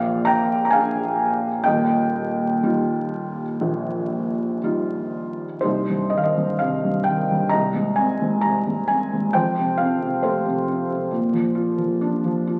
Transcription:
0.00 1.62 A#1 medium
0.00 1.63 A#2 medium
0.00 0.24 D5 medium
0.00 0.29 F5 loud
0.25 0.64 G5 medium
0.25 0.63 A#5 loud
0.65 0.73 A#5 medium
0.70 1.48 A#3 soft
0.70 1.48 D4 medium
0.70 1.48 G#4 medium
0.70 1.62 F5 medium
0.70 1.61 G#5 medium
1.64 5.59 D#1 medium
1.64 5.59 D#2 medium
1.64 4.58 D#5 medium
1.64 4.57 G5 medium
2.63 3.42 G3 soft
2.63 3.42 D#4 soft
2.63 3.42 F4 medium
3.61 5.59 A#1 medium
4.63 5.43 G3 soft
4.63 5.44 D#4 soft
4.63 5.44 F4 soft
5.61 7.48 C2 medium
5.61 7.47 D#4 soft
5.61 7.47 G4 soft
5.61 6.12 C5 medium
5.90 6.36 G2 soft
6.10 7.06 D#3 soft
6.10 6.18 D#5 medium
6.18 6.25 F5 medium
6.24 6.59 D#5 medium
6.37 6.83 G2 soft
6.59 7.49 C3 soft
6.59 7.07 F5 medium
6.85 7.30 G2 soft
7.04 7.51 D#3 soft
7.04 7.51 G5 medium
7.31 7.52 G2 soft
7.49 9.30 D#5 medium
7.49 7.97 A#5 medium
7.54 9.31 C2 medium
7.74 8.20 G#2 soft
7.96 8.88 C4 soft
7.96 8.43 G#5 medium
8.21 8.66 G#2 soft
8.41 9.32 C3 soft
8.41 8.89 A#5 medium
8.67 9.12 G#2 soft
8.88 9.33 C4 soft
8.88 9.35 G#5 medium
9.13 9.34 G#2 soft
9.33 11.09 F2 medium
9.33 10.21 C5 medium
9.33 9.80 G5 medium
9.58 10.00 C3 soft
9.78 10.66 C4 soft
9.78 10.20 F5 medium
10.01 10.44 C3 soft
10.23 11.10 A3 soft
10.23 11.99 G4 soft
10.23 11.98 A4 soft
10.23 11.98 C5 medium
10.45 10.89 C3 soft
10.68 11.11 C4 soft
10.90 11.12 C3 soft
11.11 12.60 A#2 medium
11.33 11.76 F3 soft
11.55 12.46 F4 soft
11.78 12.23 F3 soft
12.01 12.60 D4 soft
12.24 12.60 F3 soft
12.47 12.60 F4 soft

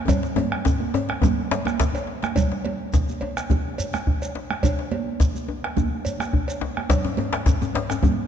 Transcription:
0.08 bombo rim soft
0.08 bombo low medium
0.08 cowbell medium
0.08 djembe slap soft
0.08 djembe tone loud
0.08 high conga soft
0.08 low conga medium
0.08 djembe bass medium
0.08 shekere medium
0.23 djembe slap medium
0.23 high conga soft
0.23 shekere soft
0.36 cowbell soft
0.36 djembe slap soft
0.36 djembe tone medium
0.36 djembe tone loud
0.36 high conga medium
0.52 bombo rim medium
0.52 djembe slap soft
0.52 high conga soft
0.65 bombo rim soft
0.65 bombo low loud
0.65 djembe slap medium
0.65 djembe tone loud
0.65 shekere medium
0.80 djembe slap soft
0.80 djembe tone medium
0.80 high conga medium
0.94 cowbell medium
0.94 djembe tone loud
0.94 shekere soft
1.09 bombo rim medium
1.09 djembe slap medium
1.09 high conga soft
1.22 bombo low medium
1.22 djembe tone medium
1.22 high conga medium
1.22 djembe bass medium
1.22 low conga medium
1.23 djembe tone loud
1.23 shekere medium
1.37 djembe slap soft
1.50 bombo rim soft
1.50 cowbell medium
1.50 djembe slap soft
1.50 djembe slap loud
1.50 shekere soft
1.65 bombo rim medium
1.65 djembe slap medium
1.65 djembe tone medium
1.65 high conga medium
1.65 shekere soft
1.79 bombo rim soft
1.79 bombo low medium
1.79 djembe slap loud
1.79 djembe bass soft
1.79 shekere medium
1.93 bombo rim soft
1.93 cowbell medium
1.93 djembe bass medium
1.93 shekere soft
2.07 djembe slap medium
2.07 high conga soft
2.22 bombo rim medium
2.22 djembe slap medium
2.22 high conga medium
2.22 shekere soft
2.35 bombo low loud
2.35 cowbell medium
2.35 high conga soft
2.35 djembe bass medium
2.35 low conga medium
2.35 shekere medium
2.52 djembe slap medium
2.65 cowbell soft
2.65 high conga medium
2.93 bombo low loud
2.93 djembe slap medium
2.93 djembe bass medium
2.93 shekere medium
3.09 high conga medium
3.09 shekere soft
3.21 cowbell soft
3.21 djembe tone medium
3.37 bombo rim medium
3.37 djembe slap medium
3.37 shekere medium
3.50 bombo low medium
3.50 high conga medium
3.50 djembe bass medium
3.50 low conga medium
3.50 shekere soft
3.78 cowbell soft
3.78 high conga soft
3.78 shekere medium
3.93 bombo rim medium
3.93 djembe slap medium
3.93 high conga medium
3.93 shekere soft
4.07 bombo low medium
4.07 djembe bass medium
4.22 cowbell soft
4.22 shekere soft
4.35 djembe slap medium
4.35 high conga soft
4.50 bombo rim medium
4.50 high conga medium
4.63 bombo low loud
4.63 cowbell medium
4.63 high conga soft
4.63 low conga medium
4.63 djembe bass medium
4.63 shekere medium
4.79 djembe slap medium
4.91 cowbell soft
4.91 high conga medium
5.20 bombo low medium
5.20 djembe slap medium
5.20 djembe bass medium
5.20 shekere medium
5.35 high conga medium
5.35 shekere soft
5.48 djembe tone medium
5.64 bombo rim medium
5.64 djembe slap medium
5.77 bombo low medium
5.77 high conga medium
5.77 low conga medium
5.77 djembe bass medium
5.77 shekere soft
6.05 cowbell soft
6.05 high conga soft
6.05 shekere medium
6.20 bombo rim medium
6.20 djembe slap medium
6.20 high conga medium
6.20 shekere soft
6.33 bombo low medium
6.33 djembe bass medium
6.48 cowbell medium
6.48 shekere medium
6.61 djembe slap medium
6.61 djembe tone medium
6.61 high conga soft
6.77 bombo rim medium
6.77 high conga medium
6.89 bombo low loud
6.89 cowbell medium
6.89 djembe slap loud
6.89 high conga soft
6.89 djembe bass medium
6.89 low conga medium
6.89 shekere medium
7.04 djembe slap medium
7.04 djembe tone medium
7.17 cowbell soft
7.17 high conga medium
7.17 djembe tone medium
7.33 bombo rim medium
7.33 djembe slap loud
7.46 bombo low loud
7.46 djembe slap medium
7.46 djembe tone medium
7.46 djembe bass medium
7.46 shekere medium
7.62 high conga medium
7.62 djembe tone medium
7.62 shekere soft
7.74 cowbell medium
7.74 djembe slap loud
7.74 djembe tone medium
7.90 bombo rim medium
7.90 djembe slap medium
7.90 djembe tone medium
7.90 shekere soft
8.03 bombo low medium
8.03 high conga medium
8.03 djembe tone medium
8.03 djembe bass medium
8.03 low conga medium
8.03 shekere soft

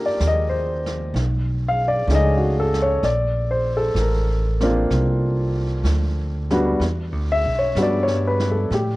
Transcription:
0.00 1.16 A#3 medium
0.00 1.16 D4 soft
0.00 1.17 D#4 medium
0.00 1.17 F4 medium
0.00 1.16 G4 medium
0.00 1.16 A#4 medium
0.06 0.20 D5 medium
0.20 1.12 D#2 medium
0.20 snare soft
0.20 hi-hat pedal medium
0.27 0.55 D#5 medium
0.49 0.70 C5 medium
0.86 snare soft
1.14 2.05 B1 medium
1.14 brush sweep soft
1.14 snare soft
1.68 1.88 F5 medium
1.88 2.05 D5 medium
2.07 2.99 C#2 medium
2.07 2.66 A3 soft
2.07 2.67 C#4 soft
2.07 2.68 D#4 soft
2.07 2.67 G#4 medium
2.07 snare medium
2.07 hi-hat pedal medium
2.15 2.43 D#5 medium
2.38 2.70 F#4 medium
2.60 2.81 A4 medium
2.74 snare soft
2.82 3.00 C#5 medium
3.03 3.94 A#1 medium
3.03 3.66 D5 medium
3.03 brush sweep soft
3.03 snare soft
3.51 3.73 C5 medium
3.77 3.94 A4 medium
3.95 4.88 A1 medium
3.95 snare soft
3.95 hi-hat pedal soft
4.00 4.89 A#4 medium
4.60 4.88 A#3 medium
4.60 4.89 C4 medium
4.60 4.89 D4 medium
4.60 4.90 F4 medium
4.60 snare soft
4.90 5.83 C2 medium
4.90 brush sweep soft
4.90 snare soft
5.84 6.77 D2 medium
5.84 snare medium
5.84 hi-hat pedal medium
6.51 6.78 G3 medium
6.51 6.79 B3 medium
6.51 6.79 D4 medium
6.51 6.79 F#4 medium
6.51 snare soft
6.80 7.12 E2 medium
6.80 brush sweep soft
6.80 snare soft
7.12 7.45 D2 soft
7.32 7.54 E5 medium
7.45 7.75 B1 medium
7.59 7.75 C#5 medium
7.75 8.68 G2 medium
7.75 8.72 G3 soft
7.75 8.72 B3 medium
7.75 8.72 D4 soft
7.75 8.73 F#4 medium
7.75 snare medium
7.75 hi-hat pedal soft
7.83 8.11 D5 medium
8.03 8.37 C#5 medium
8.08 snare soft
8.27 8.49 B4 medium
8.40 snare soft
8.51 8.69 A4 medium
8.71 8.96 A2 medium
8.71 8.96 G4 medium
8.71 brush sweep medium
8.71 snare soft

